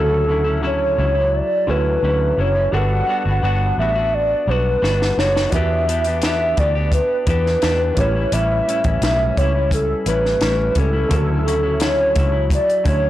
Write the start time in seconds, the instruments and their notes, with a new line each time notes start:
Already playing: fingered electric bass D2, upright piano C#3 E4 F#4 A4, clean electric guitar D3 F#3 C#4 E4, soft synth lead A4
0.27 clean electric guitar D3 F#3 C#4 E4
0.44 clean electric guitar F#3 C#4 E4
0.61 clean electric guitar D3 F#3 C#4 E4
0.67 soft synth lead C#5
0.96 fingered electric bass C#2, clean electric guitar D3 F#3 C#4 E4
1.15 clean electric guitar F#3 E4
1.36 soft synth lead D5
1.67 fingered electric bass D2, clean electric guitar D3 F#3 C#4 E4, upright piano C#4 E4 F#4 A4, soft synth lead B4
2.03 fingered electric bass D2, clean electric guitar D3 F#3 C#4 E4
2.37 fingered electric bass F#1, clean electric guitar D3 F#3 C#4 E4, soft synth lead C#5
2.55 clean electric guitar F#3 C#4 E4
2.71 fingered electric bass G1, clean electric guitar G3 B3 D4 F#4, upright piano D4 F#4 A4, soft synth lead F#5
2.76 upright piano B4
3.07 clean electric guitar G3 B3 D4 F#4
3.25 fingered electric bass G1, clean electric guitar B3 D4 F#4
3.43 fingered electric bass G1, clean electric guitar G3 B3 D4 F#4, soft synth lead F#5
3.78 fingered electric bass A1, clean electric guitar G3 B3 D4 F#4, soft synth lead E5
3.95 clean electric guitar B3 D4 F#4
4.14 soft synth lead D5
4.47 fingered electric bass B1, clean electric guitar G3 B3 D4 F#4, soft synth lead B4
4.82 fingered electric bass G1, clean electric guitar G3 B3 D4 F#4, snare
5.02 snare
5.17 fingered electric bass F#1, clean electric guitar G3 B3 D4 F#4, soft synth lead C#5, snare
5.35 clean electric guitar B3 D4 F#4, snare
5.50 fingered electric bass E2, clean electric guitar E3, upright piano D4 F#4 G4, soft synth lead E5, kick, closed hi-hat
5.55 clean electric guitar B3 D4 G4, upright piano B4
5.87 clean electric guitar E3 B3 D4 G4, closed hi-hat
6.04 clean electric guitar B3 D4 G4, closed hi-hat
6.22 clean electric guitar E3 B3 D4 G4, soft synth lead E5, snare, closed hi-hat
6.57 fingered electric bass D2, clean electric guitar E3 B3 D4 G4, soft synth lead D5, kick, closed hi-hat
6.75 clean electric guitar B3 D4 G4
6.92 soft synth lead B4, kick, closed hi-hat
7.27 fingered electric bass E2, clean electric guitar E3 B3 D4 G4, soft synth lead B4, kick, closed hi-hat
7.46 snare
7.62 fingered electric bass E2, clean electric guitar E3 B3 D4 G4, snare, closed hi-hat
7.95 fingered electric bass A1, clean electric guitar A2 G3, upright piano C#4 E4 G4, soft synth lead C#5, kick, closed hi-hat
8.00 clean electric guitar C#4 E4, upright piano B4
8.15 clean electric guitar G3 C#4 E4
8.32 fingered electric bass A1, clean electric guitar A2 G3 C#4 E4, soft synth lead E5, closed hi-hat
8.67 clean electric guitar A2 G3 C#4 E4, closed hi-hat
8.84 fingered electric bass A1, clean electric guitar G3 C#4 E4, kick, closed hi-hat
9.02 fingered electric bass B1, clean electric guitar A2 G3 C#4 E4, soft synth lead E5, snare, closed hi-hat
9.37 fingered electric bass C#2, clean electric guitar A2 G3 C#4 E4, soft synth lead C#5, kick, closed hi-hat
9.55 clean electric guitar G3 C#4 E4
9.71 soft synth lead A4, kick, closed hi-hat
10.06 fingered electric bass A1, clean electric guitar A2 G3 C#4 E4, soft synth lead B4, closed hi-hat
10.26 snare
10.41 fingered electric bass A1, clean electric guitar A2 G3 C#4 E4, snare, closed hi-hat
10.75 fingered electric bass C#2, clean electric guitar A2 G3 C#4 E4, soft synth lead A4, kick, closed hi-hat
10.93 clean electric guitar G3 C#4 E4
11.09 fingered electric bass D2, upright piano C#3 E4 F#4, clean electric guitar D3 F#3 C#4 E4, kick, closed hi-hat
11.13 upright piano A4
11.45 clean electric guitar D3 F#3 C#4 E4, closed hi-hat
11.63 clean electric guitar F#3 C#4 E4
11.80 clean electric guitar D3 F#3 C#4 E4, soft synth lead C#5, snare, closed hi-hat
12.15 fingered electric bass C#2, clean electric guitar D3 F#3 C#4 E4, kick, closed hi-hat
12.32 clean electric guitar F#3 E4
12.50 soft synth lead D5, kick, closed hi-hat
12.70 closed hi-hat
12.84 fingered electric bass D2, clean electric guitar D3 F#3 C#4 E4, kick, closed hi-hat
12.89 soft synth lead C#5